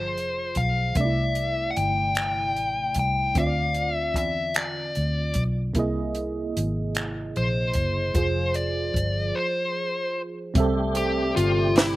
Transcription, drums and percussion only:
0.18 closed hi-hat
0.55 kick, closed hi-hat
0.95 kick, closed hi-hat
1.35 closed hi-hat
1.76 closed hi-hat
2.15 finger snap, closed hi-hat
2.56 closed hi-hat
2.94 kick, closed hi-hat
3.35 kick, closed hi-hat
3.75 closed hi-hat
4.14 kick, closed hi-hat
4.54 finger snap, closed hi-hat
4.95 closed hi-hat
5.34 kick, closed hi-hat
5.75 kick, closed hi-hat
6.15 closed hi-hat
6.57 closed hi-hat
6.95 finger snap, closed hi-hat
7.36 closed hi-hat
7.74 kick, closed hi-hat
8.15 kick, closed hi-hat
8.54 closed hi-hat
8.94 kick, closed hi-hat
10.55 kick, closed hi-hat
10.95 closed hi-hat
11.37 closed hi-hat
11.76 snare, closed hi-hat

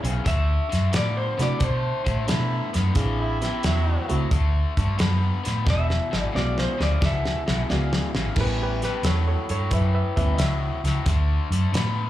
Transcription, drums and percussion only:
0.04 closed hi-hat
0.26 kick, snare, closed hi-hat
0.72 snare, closed hi-hat
0.93 snare, closed hi-hat
1.39 snare, closed hi-hat
1.60 kick, closed hi-hat
2.06 kick, closed hi-hat
2.28 snare, closed hi-hat
2.74 snare, closed hi-hat
2.95 kick, snare, closed hi-hat
3.42 snare, closed hi-hat
3.63 snare, closed hi-hat
4.09 closed hi-hat
4.31 kick, closed hi-hat
4.77 kick, closed hi-hat
4.99 snare, closed hi-hat
5.45 snare, closed hi-hat
5.67 kick, snare
5.90 snare
6.13 snare
6.36 snare
6.58 snare
6.81 snare
7.02 kick, snare
7.25 snare
7.48 snare
7.70 snare
7.93 snare
8.15 snare
8.36 kick, snare, crash
8.82 snare, closed hi-hat
9.03 snare, closed hi-hat
9.49 closed hi-hat
9.71 kick, closed hi-hat
10.17 kick, closed hi-hat
10.38 snare, closed hi-hat
10.85 snare, closed hi-hat
11.06 kick, snare, closed hi-hat
11.52 closed hi-hat
11.74 snare, closed hi-hat

